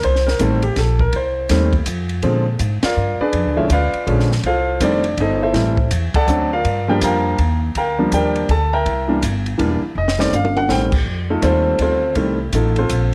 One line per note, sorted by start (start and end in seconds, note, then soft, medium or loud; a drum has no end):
0.03 0.38 C2 medium
0.03 0.26 C5 medium
0.03 kick soft
0.03 ride medium
0.16 snare soft
0.27 0.39 A#4 medium
0.27 snare soft
0.39 0.75 A1 medium
0.39 0.60 D#3 medium
0.39 0.60 G3 medium
0.39 0.60 A3 medium
0.39 0.60 C4 medium
0.39 0.63 A4 medium
0.39 kick soft
0.39 hi-hat pedal medium
0.39 ride medium
0.62 0.76 G4 medium
0.62 ride soft
0.76 1.11 A#1 medium
0.76 1.00 A4 medium
0.76 kick soft
0.76 snare soft
0.76 ride medium
0.99 1.13 A#4 medium
0.99 kick soft
1.13 1.48 C2 medium
1.13 1.48 C5 medium
1.13 kick soft
1.13 ride medium
1.49 1.85 D#2 medium
1.49 1.70 D#3 medium
1.49 1.70 G3 medium
1.49 1.71 A3 medium
1.49 1.71 C4 medium
1.49 kick soft
1.49 snare soft
1.49 hi-hat pedal medium
1.49 ride medium
1.73 kick medium
1.73 ride soft
1.86 2.21 F2 medium
1.86 kick soft
1.86 hi-hat pedal medium
1.86 ride medium
2.09 ride soft
2.22 2.58 A#2 medium
2.22 2.44 D3 medium
2.22 2.44 F3 medium
2.22 2.44 G#3 medium
2.22 2.44 C4 medium
2.22 kick soft
2.22 ride soft
2.59 2.81 G#2 medium
2.59 kick soft
2.59 hi-hat pedal medium
2.59 ride medium
2.83 3.17 F4 medium
2.83 3.17 A#4 medium
2.83 3.18 D5 medium
2.83 3.17 F5 medium
2.83 muted upright bass stroke soft
2.83 snare medium
2.83 ride medium
2.97 3.18 G2 medium
3.20 3.55 D4 medium
3.20 3.54 G#4 medium
3.20 3.54 B4 medium
3.20 3.54 D5 medium
3.20 muted upright bass stroke soft
3.33 3.46 F2 medium
3.33 kick soft
3.33 ride medium
3.46 3.57 D2 medium
3.56 3.69 B1 medium
3.56 3.68 D3 medium
3.56 3.68 F3 medium
3.56 3.69 G#3 medium
3.56 3.69 C#4 medium
3.56 3.70 E4 medium
3.56 3.70 E5 medium
3.70 3.91 D2 medium
3.70 4.27 F4 medium
3.70 4.27 B4 medium
3.70 4.27 D5 medium
3.70 4.27 F5 medium
3.70 kick soft
3.70 hi-hat pedal soft
3.70 ride medium
3.94 muted upright bass stroke soft
3.94 ride soft
4.06 4.42 A#1 medium
4.06 4.27 D3 medium
4.06 4.27 F3 medium
4.06 4.28 G#3 medium
4.06 4.28 C#4 medium
4.06 kick soft
4.06 ride soft
4.20 snare soft
4.32 snare soft
4.43 4.79 C2 medium
4.43 4.79 F4 medium
4.43 4.79 A4 medium
4.43 4.79 C5 medium
4.43 4.79 F5 medium
4.43 kick soft
4.43 ride medium
4.80 5.16 F1 medium
4.80 5.01 D#3 medium
4.80 5.02 G3 medium
4.80 5.02 A3 medium
4.80 5.02 C4 medium
4.80 5.17 D4 medium
4.80 5.16 D5 medium
4.80 kick soft
4.80 hi-hat pedal medium
4.80 ride medium
5.04 ride soft
5.17 5.53 G1 medium
5.17 5.41 D#4 medium
5.17 5.42 A4 medium
5.17 5.41 C5 medium
5.17 5.41 D#5 medium
5.17 kick soft
5.17 ride medium
5.43 5.89 E4 medium
5.43 5.89 A4 medium
5.43 5.88 C5 medium
5.43 5.88 E5 medium
5.53 5.89 A1 medium
5.53 5.74 E3 medium
5.53 5.75 G3 medium
5.53 5.75 A3 medium
5.53 5.75 C4 medium
5.53 kick soft
5.53 snare soft
5.53 ride medium
5.77 kick medium
5.91 6.13 E2 medium
5.91 kick soft
5.91 hi-hat pedal medium
5.91 ride medium
6.14 6.49 A4 medium
6.14 6.49 D5 medium
6.14 6.49 F#5 medium
6.14 6.49 A5 medium
6.14 muted upright bass stroke soft
6.14 kick medium
6.14 ride medium
6.27 6.63 D2 medium
6.27 6.48 F#3 medium
6.27 6.49 A3 medium
6.27 6.49 C4 medium
6.27 6.49 D4 medium
6.27 hi-hat pedal medium
6.53 6.86 F4 medium
6.53 6.86 A#4 medium
6.53 6.86 D5 medium
6.53 6.86 F5 medium
6.65 7.00 G2 medium
6.65 kick soft
6.65 ride medium
6.88 7.35 F3 medium
6.88 7.35 G3 medium
6.88 7.36 A#3 medium
6.88 7.36 D4 medium
6.88 7.02 G4 medium
6.88 7.02 A#4 medium
6.88 7.02 D5 medium
6.88 7.02 G5 medium
7.01 7.37 F2 medium
7.01 7.59 A#4 medium
7.01 7.59 F5 medium
7.01 7.59 G5 medium
7.01 7.59 A#5 medium
7.01 kick soft
7.01 hi-hat pedal medium
7.01 ride medium
7.38 7.74 D#2 medium
7.38 kick soft
7.38 ride medium
7.75 8.11 D2 medium
7.75 8.11 A#4 medium
7.75 8.10 F5 medium
7.75 8.11 G5 medium
7.75 8.10 A#5 medium
7.75 kick soft
7.75 ride medium
7.98 8.46 F3 medium
7.98 8.46 G3 medium
7.98 8.46 A#3 medium
7.98 8.46 D4 medium
8.12 8.47 D#2 medium
8.12 8.47 G4 medium
8.12 8.47 A#4 medium
8.12 8.47 D5 medium
8.12 8.47 G5 medium
8.12 kick soft
8.12 hi-hat pedal medium
8.12 ride medium
8.36 ride soft
8.49 8.84 D2 medium
8.49 8.72 A4 medium
8.49 8.72 A5 medium
8.49 kick soft
8.49 ride medium
8.73 9.19 A#4 medium
8.73 9.19 E5 medium
8.73 9.19 G5 medium
8.73 9.19 A#5 medium
8.86 9.21 C2 medium
8.86 kick soft
8.86 ride medium
9.08 9.20 E3 medium
9.08 9.20 G3 medium
9.08 9.21 A#3 medium
9.08 9.21 D4 medium
9.22 9.58 G1 medium
9.22 kick soft
9.22 hi-hat pedal medium
9.22 ride medium
9.46 ride soft
9.58 9.80 E1 medium
9.58 9.79 E3 medium
9.58 9.79 G3 medium
9.58 9.79 A#3 medium
9.58 9.80 D4 medium
9.58 kick soft
9.58 ride medium
9.82 muted upright bass stroke soft
9.95 10.31 F1 medium
9.95 10.19 D#5 medium
10.08 snare medium
10.18 10.31 D#3 medium
10.18 10.31 G3 medium
10.18 10.31 A3 medium
10.18 10.31 C4 medium
10.18 10.32 D5 medium
10.18 snare medium
10.32 10.68 G1 medium
10.32 10.56 F5 medium
10.32 hi-hat pedal medium
10.32 high tom medium
10.45 high tom medium
10.57 10.69 F#5 medium
10.57 high tom medium
10.68 11.04 A1 medium
10.68 10.89 D#3 medium
10.68 10.90 G3 medium
10.68 10.90 A3 medium
10.68 10.90 C4 medium
10.68 10.85 G5 medium
10.68 snare medium
10.92 kick medium
10.92 crash medium
11.06 11.41 F2 medium
11.06 kick soft
11.30 11.41 A3 medium
11.30 11.43 D#4 medium
11.30 11.43 F4 medium
11.30 11.43 A4 medium
11.42 11.78 D#2 medium
11.42 11.97 D#3 medium
11.42 11.98 G3 medium
11.42 11.98 A3 medium
11.42 11.81 C4 medium
11.42 11.78 F4 medium
11.42 11.78 A4 medium
11.42 11.78 C5 medium
11.42 kick soft
11.42 hi-hat pedal medium
11.42 ride medium
11.79 12.15 D2 medium
11.79 12.15 C4 medium
11.79 12.15 F4 medium
11.79 12.15 A4 medium
11.79 12.15 C5 medium
11.79 kick soft
11.79 ride medium
12.15 12.52 C2 medium
12.15 12.37 D#3 medium
12.15 12.37 G3 medium
12.15 12.37 A3 medium
12.15 12.37 C4 medium
12.15 kick soft
12.15 ride medium
12.53 12.88 A1 medium
12.53 12.76 A3 medium
12.53 12.76 D#4 medium
12.53 12.76 F4 soft
12.53 12.76 A4 medium
12.53 kick soft
12.53 hi-hat pedal medium
12.53 ride medium
12.76 13.12 C4 medium
12.76 13.12 F4 medium
12.76 13.12 A4 medium
12.76 13.12 C5 medium
12.76 ride soft
12.89 13.14 A#1 medium
12.89 kick soft
12.89 hi-hat pedal soft
12.89 ride medium